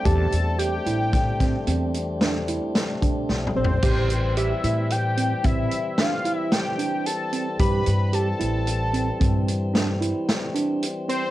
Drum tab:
CC |------------------------------------------|x-----------------------------------------|------------------------------------------|
HH |x--x--x--x--x--x--x--x--x--x--x--x--------|x--x--x--x--x--x--x--x--x--x--x--x--x--x--|x--x--x--x--x--x--x--x--x--x--x--x--x--x--|
SD |------------o--o--------o-----o-----o-----|------------------------o-----o-----------|------------------------o-----o-----------|
T2 |--------------------------------------o---|------------------------------------------|------------------------------------------|
FT |----------------------------------------o-|------------------------------------------|------------------------------------------|
BD |o-----------o--o-----------------o--------|o-----------------o-----------------------|o-----------------o-----------------------|